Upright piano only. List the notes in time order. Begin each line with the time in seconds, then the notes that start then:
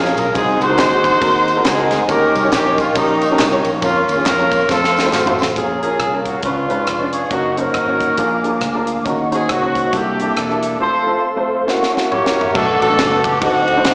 0.04 A#3 C#4 F4 A#4
0.34 C3 C4 D#4 F#4 G#4
0.68 C4 D#4 F#4 A#4
0.89 C4 D#4 F#4 G#4
1.20 C4 D#4 F#4 A#4
1.55 C4 D#4 F#4 A#4
1.78 C4 D#4 F#4 A#4
2.08 D#3 C#4 D#4 G4 A#4
2.43 C#4 D#4 G4 C#5
2.65 C#4 D#4 G4 C#5
2.95 C#4 D#4 G4 A#4
3.30 C#4 D#4 G4 A#4
3.52 C#4 D#4 G4 C#5
3.82 A#3 C#4 F4 A#4
4.16 A#3 C#4 F4 G#4
4.38 A#3 C#4 F4 A#4
4.69 A3 C4 F4 A4
5.04 A3 C4 F4 C5
5.26 A3 C4 F4 C5
5.56 A#2 A#3 C#4 F4 G#4
5.82 A#3 C#4 F4 A#4
6.13 A#3 C#4 F4 A#4
6.44 C#3 C#4 D4 F4 B4
6.69 C#4 D4 F4 B4
7.00 C#4 D4 F4 D5
7.30 C#4 D#4 F#4 A#4
7.57 C#4 D#4 F#4 C5
7.87 C#4 D#4 F#4 C#5
8.17 A#2 D4 F4 G#4 A#4
8.44 D4 F4 G#4 A#4
8.74 D4 F4 G#4 A#4
9.05 D#3 C#4 D#4 F#4 A#4
9.30 C#4 D#4 F#4 C5
9.61 C#4 D#4 F#4 C5
9.92 C3 A#3 D4 E4 A4
10.19 A#3 D4 E4 A4
10.49 A#3 D4 E4 A4
10.80 A3 C4 F4 A4
11.06 A3 C4 F4 A4
11.36 A3 C4 F4 C5
11.66 A#3 C#4 E4 F#4
11.93 A#3 C#4 E4 F#4
12.23 A#3 C#4 E4 F#4
12.54 B2 A3 B3 D4 F#4 A4
12.89 A3 B3 D4 F#4 A4
13.10 A3 B3 D4 F#4 A4
13.41 D3 C4 D4 D#4 F#4 A4
13.76 C4 D4 D#4 F#4 C5